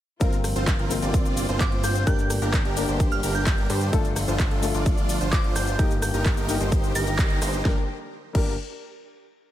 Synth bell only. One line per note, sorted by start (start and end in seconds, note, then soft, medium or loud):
1.61 1.79 D6 medium
1.84 2.05 G6 medium
2.07 2.42 G6 medium
3.12 3.33 F6 medium
3.35 3.98 G6 medium
5.32 5.51 D6 medium
5.56 5.77 G6 medium
6.02 6.21 G6 medium
6.95 7.42 A#6 medium